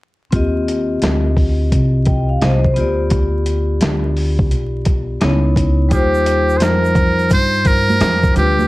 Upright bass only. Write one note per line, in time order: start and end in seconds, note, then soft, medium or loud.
0.33 0.99 D#2 medium
1.02 1.69 D2 medium
1.72 2.39 C2 medium
2.42 2.75 C2 medium
2.77 3.78 D2 medium
3.82 4.51 D2 medium
4.51 5.18 B1 medium
5.22 5.88 C#2 loud
5.91 6.61 D#2 medium
6.61 7.28 F2 medium
7.31 7.97 G2 medium
8.00 8.34 F2 medium
8.36 8.68 D2 medium